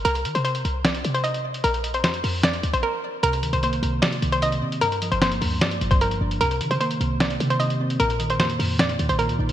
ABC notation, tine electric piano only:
X:1
M:4/4
L:1/8
Q:1/4=151
K:Cm
V:1 name="Tine electric piano" clef=bass
z8 | z8 | C, E, B, C,2 E, C, C | G,, F, B, G,,2 F, G,, D |
C, E, B, C,2 E, C, C | B,, E, B, B,,2 E, B,, E |]